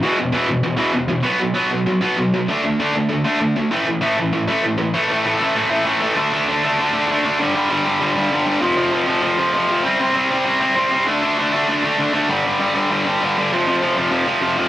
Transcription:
\new Staff \with { instrumentName = "Distorted electric guitar" } { \clef bass \time 4/4 \key a \mixolydian \tempo 4 = 196 <e, b, e>8 <e, b,>8 <e, b, e>8 <e, b,>8 <e, b,>8 <e, b, e>8 <e, b,>8 <e, b,>8 | <b, fis b>8 <b, fis>8 <b, fis b>8 <b, fis>8 <b, fis>8 <b, fis b>8 <b, fis>8 <b, fis>8 | <d a d'>8 <d a>8 <d a d'>8 <d a>8 <d a>8 <d a d'>8 <d a>8 <d a>8 | <a, e a>8 <a, e>8 <a, e a>8 <a, e>8 <a, e>8 <a, e a>8 <a, e>8 <a, e>8 |
<a, e a>8 <a, e a>8 <a, e a>8 <a, e a>8 <a, e a>8 <a, e a>8 <a, e a>8 <a, e a>8 | <d a d'>8 <d a d'>8 <d a d'>8 <d a d'>8 <d a d'>8 <d a d'>8 <d a d'>8 <d a d'>8 | <g, d g>8 <g, d g>8 <g, d g>8 <g, d g>8 <g, d g>8 <g, d g>8 <g, d g>8 <g, d g>8 | <f, c f>8 <f, c f>8 <f, c f>8 <f, c f>8 <f, c f>8 <f, c f>8 <f, c f>8 <f, c f>8 |
<c g c'>8 <c g c'>8 <c g c'>8 <c g c'>8 <c g c'>8 <c g c'>8 <c g c'>8 <c g c'>8 | <d a d'>8 <d a d'>8 <d a d'>8 <d a d'>8 <d a d'>8 <d a d'>8 <d a d'>8 <d a d'>8 | <g, d g>8 <g, d g>8 <g, d g>8 <g, d g>8 <g, d g>8 <g, d g>8 <g, d g>8 <g, d g>8 | <f, c f>8 <f, c f>8 <f, c f>8 <f, c f>8 <f, c f>8 <f, c f>8 <f, c f>8 <f, c f>8 | }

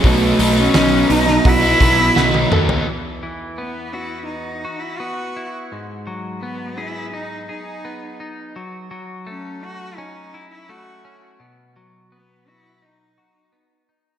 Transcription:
<<
  \new Staff \with { instrumentName = "Five-string banjo" } { \time 4/4 \key e \major \tempo 4 = 84 r4 dis'4 fis'4 fis'8 a'8 | r1 | r1 | r1 |
r1 | }
  \new Staff \with { instrumentName = "Cello" } { \time 4/4 \key e \major a8. cis'8. dis'8 e'4. r8 | r4 b8 e'8 dis'8. e'16 fis'8. r16 | r4 b8 e'8 dis'8 dis'4 r8 | r4 cis'8 fis'8 dis'8. e'16 fis'8. r16 |
r4 b8 e'8 dis'4. r8 | }
  \new Staff \with { instrumentName = "Clean electric guitar" } { \time 4/4 \key e \major r1 | e,8 e8 b8 fis'4 fis'8 b8 e'8 | gis,8 fis8 b8 gis'8 dis'8 gis'8 b8 dis'8 | fis8 fis8 a4 cis'8 e'8 a8 cis'8 |
b,8 fis8 b8 fis'8 dis'8 fis'8 b8 dis'8 | }
  \new Staff \with { instrumentName = "Overdriven electric guitar" } { \time 4/4 \key e \major <b, fis b dis'>8 <b, fis b dis'>16 <fis b dis'>16 <b, fis b dis'>4~ <b, fis b dis'>16 <fis b dis'>16 <b, fis b dis'>8 <b, fis b dis'>8 <b, fis b dis'>16 <fis b dis'>16 | r1 | r1 | r1 |
r1 | }
  \new Staff \with { instrumentName = "Picked electric bass" } { \clef bass \time 4/4 \key e \major b,,8 b,,8 b,,8 b,,8 b,,8 b,,8 b,,8 dis,8 | r1 | r1 | r1 |
r1 | }
  \new DrumStaff \with { instrumentName = "Drums" } \drummode { \time 4/4 <hho bd>8 hho8 <hho sn>8 hho16 sn16 <hho bd>8 <hho bd>8 sn16 tommh16 toml16 tomfh16 | r4 r4 r4 r4 | r4 r4 r4 r4 | r4 r4 r4 r4 |
r4 r4 r4 r4 | }
>>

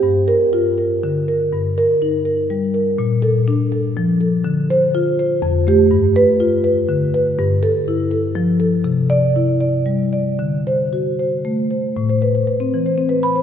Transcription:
\new Staff \with { instrumentName = "Marimba" } { \time 3/4 \key g \minor \tempo 4 = 121 << { r8 bes'4 r4. | r8 bes'4 r4. | r8 a'4 r4. | r8 c''4 r4 g'8 |
\key a \minor r8 b'4 r4. | r8 a'4 r4. | r8 d''4 r4. | r8 c''4 r4. |
r2 r8 b''8 | } \\ { g,4 f'8 bes'8 d8 bes'8 | g,4 ees'8 bes'8 g8 bes'8 | bes,4 d'8 a'8 f8 a'8 | d4 f'8 c''8 f,8 a8 |
g,4 f'8 b'8 d8 b'8 | g,4 e'8 a'8 f8 a'8 | c4 e'8 d''8 g8 d''8 | d4 fis'8 c''8 a8 c''8 |
a,16 c''16 b'16 c''16 b'16 c'16 e16 c''16 c'16 b'8 c''16 | } >> }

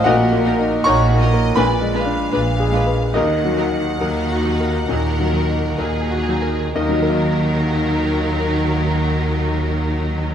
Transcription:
<<
  \new Staff \with { instrumentName = "Violin section" } { \time 4/4 \key ees \minor \tempo 4 = 68 bes'4 ges'8 ees''8 d''8 f''4. | ges''2.~ ges''8 r8 | ees'1 | }
  \new Staff \with { instrumentName = "Violin section" } { \time 4/4 \key ees \minor bes'8 bes'8 bes'8 bes'8 ces''8 ces''8 ces''8 ces''8 | bes'8 bes'8 ees'4 bes'4 aes'4 | bes'1 | }
  \new Staff \with { instrumentName = "Grand piano" } { \time 4/4 \key ees \minor << { <ges' ees'' ges''>4 <des'' bes'' des'''>4 <ces'' aes'' ces'''>2 | <ees' bes' ees''>2.~ <ees' bes' ees''>8 r8 | <ees, ees ges ees' bes' ees''>1 | } \\ { \tuplet 3/2 { bes,8 bes8 ees'8 bes'8 ees'8 bes'8 bes,8 aes8 d'8 ces''8 aes'8 ces''8 } | \tuplet 3/2 { ees,8 ges8 ees'8 bes'8 ges'8 bes'8 bes,8 ges8 ees'8 bes'8 ges'8 bes'8 } | r1 | } >> }
  \new Staff \with { instrumentName = "Viola section" } { \time 4/4 \key ees \minor <bes ees'>8 <bes ees'>8 <bes ees'>8 <bes ees'>8 <aes d'>8 <aes d'>8 <aes d'>8 <aes d'>8 | <ges ees'>8 <ges ees'>8 <ges ees'>8 <ges ees'>8 <ges ees'>8 <ges ees'>8 <ges ees'>8 <ges ees'>8 | ges1 | }
  \new Staff \with { instrumentName = "Cello section" } { \clef bass \time 4/4 \key ees \minor bes,4 bes,4 bes,4 bes,4 | ees4 ees4 ees4 ees4 | ees1 | }
  \new Staff \with { instrumentName = "Double bass section" } { \clef bass \time 4/4 \key ees \minor bes,,4 bes,,4 bes,,4 bes,,4 | ees,4 ees,4 ees,4 ees,4 | ees,1 | }
>>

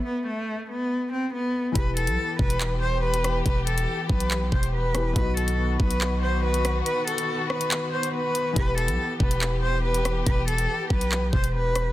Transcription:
<<
  \new Staff \with { instrumentName = "Cello" } { \time 4/4 \key e \minor \tempo 4 = 141 b8 a4 b4 c'8 b4 | b'8 a'4 b'4 c''8 b'4 | b'8 a'4 b'4 c''8 b'4 | b'8 a'4 b'4 c''8 b'4 |
b'8 a'4 b'4 c''8 b'4 | b'8 a'4 b'4 c''8 b'4 | b'8 a'4 b'4 c''8 b'4 | }
  \new Staff \with { instrumentName = "Felt piano" } { \time 4/4 \key e \minor <a a' e''>1 | <e e' g' b'>1~ | <e e' g' b'>2.~ <e e' g' b'>8 <e e' g' b'>8 | <b, b dis' fis'>1~ |
<b, b dis' fis'>1 | <e e' g' b'>1~ | <e e' g' b'>1 | }
  \new Staff \with { instrumentName = "String section" } { \time 4/4 \key e \minor << { r1 | <e g'>1~ | <e g'>1 | <dis fis'>1~ |
<dis fis'>1 | <e g'>1~ | <e g'>1 | } \\ { r1 | b1~ | b1~ | b1~ |
b1~ | b1~ | b1 | } >> }
  \new Staff \with { instrumentName = "808-style bass" } { \clef bass \time 4/4 \key e \minor r1 | e,,8. b,,16 r8 e,,2~ e,,8 | e,,4 r8 b,,4 e,,4. | b,,4. b,,2~ b,,8 |
r1 | e,,8. b,,16 r8 e,,2~ e,,8 | e,,4 r8 b,,4 e,,4. | }
  \new DrumStaff \with { instrumentName = "Drums" } \drummode { \time 4/4 r4 r4 r4 r4 | <hh bd>8 hh16 hh16 r8 bd16 hh16 hc4 r16 hh16 <hh ss>8 | <hh bd>8 hh16 hh16 r8 bd16 hh16 hc8 bd16 hh16 r8 <hh ss>8 | <hh bd>8 hh16 hh16 r8 bd16 hh16 hc4 r16 hh16 <hh ss>8 |
hh8 hh16 hh16 r8 ss16 hh16 hc8. hh16 r8 hh8 | <hh bd>8 hh16 hh16 r8 bd16 hh16 hc4 r16 hh16 <hh ss>8 | <hh bd>8 hh16 hh16 r8 bd16 hh16 hc8 bd16 hh16 r8 <hh ss>8 | }
>>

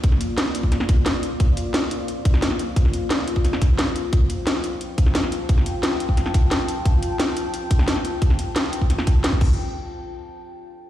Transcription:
<<
  \new Staff \with { instrumentName = "Ambient pad" } { \time 4/4 \key f \major \tempo 4 = 176 <bes f' c'' d''>1~ | <bes f' c'' d''>1~ | <bes f' c'' d''>1 | <f' g'' a''>1~ |
<f' g'' a''>1~ | <f' g'' a''>1~ | <f' g'' a''>2.~ <f' g'' a''>8 r8 | r1 | }
  \new DrumStaff \with { instrumentName = "Drums" } \drummode { \time 4/4 <hh bd>16 sn16 hh8 <hh sn>16 sn16 hh16 bd16 <hh sn>16 sn16 <hh bd>8 <hh sn>8 hh8 | <hh bd>8 hh8 <hh sn>16 sn16 hh8 hh8 <hh bd>16 sn16 <hh sn>16 sn16 hh8 | <hh bd>16 sn16 hh8 <hh sn>16 sn16 hh16 bd16 <hh sn>16 sn16 <hh bd>8 <hh sn>8 hh8 | <hh bd>8 hh8 <hh sn>16 sn16 hh8 hh8 <hh bd>16 sn16 <hh sn>16 sn16 hh8 |
<hh bd>16 sn16 hh8 <hh sn>16 sn16 hh16 bd16 <hh sn>16 sn16 <hh bd>8 <hh sn>8 hh8 | <hh bd>8 hh8 <hh sn>16 sn16 hh8 hh8 <hh bd>16 sn16 <hh sn>16 sn16 hh8 | <hh bd>16 sn16 hh8 <hh sn>16 sn16 hh16 bd16 <hh sn>16 sn16 <hh bd>8 <hh sn>16 bd16 <cymc bd>8 | r4 r4 r4 r4 | }
>>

